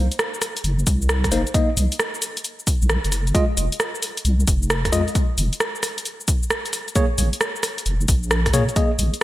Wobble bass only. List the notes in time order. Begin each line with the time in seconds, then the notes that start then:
0.64 F#1
0.87 C2
1.32 F#1
1.77 C2
2.82 A#1
3.05 F#1
3.57 F1
4.25 C2
4.48 F1
4.93 F2
5.38 F1
7.18 A#1
7.86 F1
8.08 A#1
8.54 A#2
8.99 A#1